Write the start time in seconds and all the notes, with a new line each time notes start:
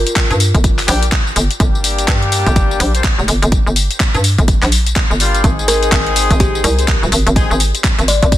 Already playing: A#4
0.07 closed hi-hat, tambourine
0.16 kick, clap, closed hi-hat, tambourine
0.31 G2, closed hi-hat, tambourine
0.40 open hi-hat, tambourine
0.55 G1, kick, closed hi-hat, tambourine
0.64 kick, closed hi-hat, tambourine
0.79 clap, open hi-hat, tambourine
0.88 A#1 G3 A#3 D4 G4, open hi-hat, tambourine
1.02 closed hi-hat, tambourine
1.12 kick, clap, closed hi-hat, tambourine
1.27 tambourine
1.36 G1, open hi-hat, tambourine
1.51 closed hi-hat, tambourine
1.60 G1 G3 A#3 D4 G4, kick, closed hi-hat, tambourine
1.75 tambourine
1.84 open hi-hat, tambourine
1.98 closed hi-hat, tambourine
2.08 G2, kick, clap, closed hi-hat, tambourine
2.23 closed hi-hat
2.32 open hi-hat, tambourine
2.46 G1, kick, closed hi-hat, tambourine
2.56 kick, closed hi-hat, tambourine
2.71 tambourine
2.80 A#1, open hi-hat, tambourine
2.94 G3 A#3 D4 C5, closed hi-hat, tambourine
3.04 kick, clap, closed hi-hat, tambourine
3.19 F1, tambourine
3.28 G1, open hi-hat, tambourine
3.42 G1, closed hi-hat, tambourine
3.52 kick, closed hi-hat, tambourine
3.67 G1, tambourine
3.76 open hi-hat, tambourine
3.91 closed hi-hat, tambourine
4.00 kick, clap, closed hi-hat, tambourine
4.14 G2, closed hi-hat, tambourine
4.24 open hi-hat, tambourine
4.38 G1, kick, closed hi-hat, tambourine
4.48 kick, closed hi-hat, tambourine
4.62 A#1, clap, open hi-hat, tambourine
4.72 open hi-hat, tambourine
4.87 closed hi-hat, tambourine
4.96 kick, clap, closed hi-hat, tambourine
5.10 G1, tambourine
5.20 G3 A#3 D4 F4, open hi-hat, tambourine
5.35 closed hi-hat, tambourine
5.44 G#1 G#3 C4 D#4 G#4, kick, closed hi-hat, tambourine
5.59 tambourine
5.68 A#4, open hi-hat, tambourine
5.83 closed hi-hat, tambourine
5.92 G#1, kick, clap, closed hi-hat, tambourine
6.07 closed hi-hat
6.16 open hi-hat, tambourine
6.31 G#1, kick, closed hi-hat, tambourine
6.40 G4, kick, closed hi-hat, tambourine
6.55 tambourine
6.64 C2 A#4, open hi-hat, tambourine
6.79 G#3 C4 D#4 C5, closed hi-hat, tambourine
6.88 kick, clap, closed hi-hat, tambourine
7.03 D#1, tambourine
7.12 G#1, open hi-hat, tambourine
7.27 G#1, closed hi-hat, tambourine
7.36 G#3 C4 D#4 G#4, kick, closed hi-hat, tambourine
7.51 G#1, tambourine
7.60 open hi-hat, tambourine
7.75 closed hi-hat, tambourine
7.84 kick, clap, closed hi-hat, tambourine
7.99 G#1, closed hi-hat, tambourine
8.08 D5, open hi-hat, tambourine
8.22 G#1 D5, kick, closed hi-hat, tambourine
8.32 kick, closed hi-hat, tambourine